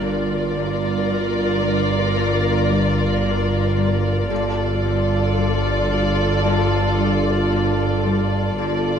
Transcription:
0, 0, Header, 1, 8, 480
1, 0, Start_track
1, 0, Key_signature, -2, "minor"
1, 0, Tempo, 1071429
1, 9, Time_signature, 4, 2, 24, 8
1, 4028, End_track
2, 0, Start_track
2, 0, Title_t, "Violin section"
2, 0, Program_c, 0, 48
2, 17, Note_on_c, 0, 74, 50
2, 1915, Note_off_c, 0, 74, 0
2, 1929, Note_on_c, 0, 74, 51
2, 3831, Note_off_c, 0, 74, 0
2, 3847, Note_on_c, 0, 74, 54
2, 4028, Note_off_c, 0, 74, 0
2, 4028, End_track
3, 0, Start_track
3, 0, Title_t, "Violin section"
3, 0, Program_c, 1, 48
3, 9, Note_on_c, 1, 70, 52
3, 1911, Note_off_c, 1, 70, 0
3, 1925, Note_on_c, 1, 69, 52
3, 3829, Note_off_c, 1, 69, 0
3, 3848, Note_on_c, 1, 69, 59
3, 4028, Note_off_c, 1, 69, 0
3, 4028, End_track
4, 0, Start_track
4, 0, Title_t, "Viola section"
4, 0, Program_c, 2, 48
4, 11, Note_on_c, 2, 65, 50
4, 1912, Note_off_c, 2, 65, 0
4, 1927, Note_on_c, 2, 65, 57
4, 3830, Note_off_c, 2, 65, 0
4, 3849, Note_on_c, 2, 65, 60
4, 4028, Note_off_c, 2, 65, 0
4, 4028, End_track
5, 0, Start_track
5, 0, Title_t, "Harp"
5, 0, Program_c, 3, 46
5, 0, Note_on_c, 3, 55, 35
5, 8, Note_on_c, 3, 43, 52
5, 246, Note_off_c, 3, 43, 0
5, 251, Note_on_c, 3, 43, 41
5, 487, Note_off_c, 3, 55, 0
5, 493, Note_on_c, 3, 55, 40
5, 726, Note_off_c, 3, 55, 0
5, 732, Note_on_c, 3, 55, 33
5, 964, Note_off_c, 3, 43, 0
5, 969, Note_on_c, 3, 43, 52
5, 1206, Note_off_c, 3, 55, 0
5, 1212, Note_on_c, 3, 55, 40
5, 1448, Note_off_c, 3, 43, 0
5, 1453, Note_on_c, 3, 43, 43
5, 1686, Note_off_c, 3, 55, 0
5, 1691, Note_on_c, 3, 55, 36
5, 1922, Note_off_c, 3, 43, 0
5, 1927, Note_on_c, 3, 43, 53
5, 1949, Note_off_c, 3, 55, 0
5, 2166, Note_off_c, 3, 43, 0
5, 2171, Note_on_c, 3, 43, 46
5, 2409, Note_on_c, 3, 55, 44
5, 2646, Note_off_c, 3, 55, 0
5, 2652, Note_on_c, 3, 55, 40
5, 2882, Note_off_c, 3, 43, 0
5, 2888, Note_on_c, 3, 43, 62
5, 3123, Note_off_c, 3, 55, 0
5, 3128, Note_on_c, 3, 55, 44
5, 3366, Note_off_c, 3, 43, 0
5, 3371, Note_on_c, 3, 43, 47
5, 3603, Note_off_c, 3, 55, 0
5, 3609, Note_on_c, 3, 55, 47
5, 3840, Note_off_c, 3, 43, 0
5, 3846, Note_on_c, 3, 43, 54
5, 4028, Note_off_c, 3, 43, 0
5, 4028, Note_off_c, 3, 55, 0
5, 4028, End_track
6, 0, Start_track
6, 0, Title_t, "Cello section"
6, 0, Program_c, 4, 48
6, 7, Note_on_c, 4, 43, 51
6, 1910, Note_off_c, 4, 43, 0
6, 1929, Note_on_c, 4, 43, 49
6, 3831, Note_off_c, 4, 43, 0
6, 3846, Note_on_c, 4, 43, 61
6, 4028, Note_off_c, 4, 43, 0
6, 4028, End_track
7, 0, Start_track
7, 0, Title_t, "Double bass section"
7, 0, Program_c, 5, 48
7, 10, Note_on_c, 5, 31, 49
7, 1912, Note_off_c, 5, 31, 0
7, 1931, Note_on_c, 5, 31, 53
7, 3832, Note_off_c, 5, 31, 0
7, 3850, Note_on_c, 5, 31, 56
7, 4028, Note_off_c, 5, 31, 0
7, 4028, End_track
8, 0, Start_track
8, 0, Title_t, "Synth drone"
8, 0, Program_c, 6, 95
8, 6, Note_on_c, 6, 31, 63
8, 1910, Note_off_c, 6, 31, 0
8, 1927, Note_on_c, 6, 31, 66
8, 3830, Note_off_c, 6, 31, 0
8, 3841, Note_on_c, 6, 31, 59
8, 4028, Note_off_c, 6, 31, 0
8, 4028, End_track
0, 0, End_of_file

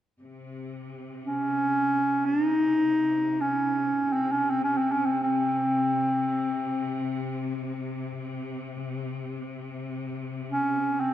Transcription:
0, 0, Header, 1, 3, 480
1, 0, Start_track
1, 0, Tempo, 500000
1, 10692, End_track
2, 0, Start_track
2, 0, Title_t, "Clarinet"
2, 0, Program_c, 0, 71
2, 1208, Note_on_c, 0, 61, 79
2, 2166, Note_on_c, 0, 62, 77
2, 2180, Note_off_c, 0, 61, 0
2, 2348, Note_off_c, 0, 62, 0
2, 2348, Note_on_c, 0, 63, 77
2, 3274, Note_on_c, 0, 61, 68
2, 3288, Note_off_c, 0, 63, 0
2, 3965, Note_on_c, 0, 60, 68
2, 3979, Note_off_c, 0, 61, 0
2, 4147, Note_on_c, 0, 61, 64
2, 4162, Note_off_c, 0, 60, 0
2, 4323, Note_on_c, 0, 60, 69
2, 4337, Note_off_c, 0, 61, 0
2, 4448, Note_off_c, 0, 60, 0
2, 4453, Note_on_c, 0, 61, 65
2, 4585, Note_on_c, 0, 60, 65
2, 4600, Note_off_c, 0, 61, 0
2, 4717, Note_on_c, 0, 61, 68
2, 4731, Note_off_c, 0, 60, 0
2, 4859, Note_on_c, 0, 60, 65
2, 4874, Note_off_c, 0, 61, 0
2, 5018, Note_off_c, 0, 60, 0
2, 5024, Note_on_c, 0, 60, 65
2, 7499, Note_off_c, 0, 60, 0
2, 10073, Note_on_c, 0, 61, 71
2, 10562, Note_on_c, 0, 60, 75
2, 10576, Note_off_c, 0, 61, 0
2, 10692, Note_off_c, 0, 60, 0
2, 10692, End_track
3, 0, Start_track
3, 0, Title_t, "String section"
3, 0, Program_c, 1, 48
3, 190, Note_on_c, 1, 48, 36
3, 10692, Note_off_c, 1, 48, 0
3, 10692, End_track
0, 0, End_of_file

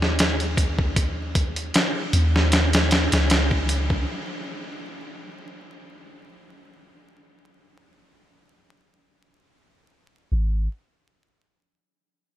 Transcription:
0, 0, Header, 1, 3, 480
1, 0, Start_track
1, 0, Tempo, 779221
1, 594, Time_signature, 4, 2, 24, 8
1, 7617, End_track
2, 0, Start_track
2, 0, Title_t, "808-style bass"
2, 0, Program_c, 0, 38
2, 0, Note_on_c, 0, 39, 105
2, 1053, Note_off_c, 0, 39, 0
2, 1313, Note_on_c, 0, 39, 107
2, 1899, Note_off_c, 0, 39, 0
2, 1926, Note_on_c, 0, 37, 97
2, 2494, Note_off_c, 0, 37, 0
2, 6355, Note_on_c, 0, 32, 92
2, 6578, Note_off_c, 0, 32, 0
2, 7617, End_track
3, 0, Start_track
3, 0, Title_t, "Drums"
3, 14, Note_on_c, 9, 38, 44
3, 76, Note_off_c, 9, 38, 0
3, 116, Note_on_c, 9, 42, 84
3, 124, Note_on_c, 9, 38, 106
3, 178, Note_off_c, 9, 42, 0
3, 186, Note_off_c, 9, 38, 0
3, 247, Note_on_c, 9, 42, 42
3, 309, Note_off_c, 9, 42, 0
3, 354, Note_on_c, 9, 36, 94
3, 356, Note_on_c, 9, 42, 72
3, 415, Note_off_c, 9, 36, 0
3, 417, Note_off_c, 9, 42, 0
3, 484, Note_on_c, 9, 36, 93
3, 545, Note_off_c, 9, 36, 0
3, 593, Note_on_c, 9, 36, 109
3, 594, Note_on_c, 9, 42, 80
3, 655, Note_off_c, 9, 36, 0
3, 656, Note_off_c, 9, 42, 0
3, 833, Note_on_c, 9, 36, 99
3, 833, Note_on_c, 9, 42, 69
3, 894, Note_off_c, 9, 42, 0
3, 895, Note_off_c, 9, 36, 0
3, 963, Note_on_c, 9, 42, 39
3, 1025, Note_off_c, 9, 42, 0
3, 1074, Note_on_c, 9, 42, 83
3, 1082, Note_on_c, 9, 38, 114
3, 1135, Note_off_c, 9, 42, 0
3, 1143, Note_off_c, 9, 38, 0
3, 1314, Note_on_c, 9, 42, 69
3, 1375, Note_off_c, 9, 42, 0
3, 1452, Note_on_c, 9, 38, 48
3, 1514, Note_off_c, 9, 38, 0
3, 1552, Note_on_c, 9, 42, 77
3, 1560, Note_on_c, 9, 38, 99
3, 1613, Note_off_c, 9, 42, 0
3, 1621, Note_off_c, 9, 38, 0
3, 1684, Note_on_c, 9, 42, 74
3, 1692, Note_on_c, 9, 38, 103
3, 1746, Note_off_c, 9, 42, 0
3, 1754, Note_off_c, 9, 38, 0
3, 1792, Note_on_c, 9, 42, 72
3, 1800, Note_on_c, 9, 38, 99
3, 1854, Note_off_c, 9, 42, 0
3, 1862, Note_off_c, 9, 38, 0
3, 1923, Note_on_c, 9, 42, 80
3, 1931, Note_on_c, 9, 38, 99
3, 1984, Note_off_c, 9, 42, 0
3, 1992, Note_off_c, 9, 38, 0
3, 2032, Note_on_c, 9, 42, 79
3, 2040, Note_on_c, 9, 38, 112
3, 2094, Note_off_c, 9, 42, 0
3, 2102, Note_off_c, 9, 38, 0
3, 2163, Note_on_c, 9, 36, 94
3, 2225, Note_off_c, 9, 36, 0
3, 2273, Note_on_c, 9, 42, 68
3, 2334, Note_off_c, 9, 42, 0
3, 2404, Note_on_c, 9, 36, 85
3, 2465, Note_off_c, 9, 36, 0
3, 7617, End_track
0, 0, End_of_file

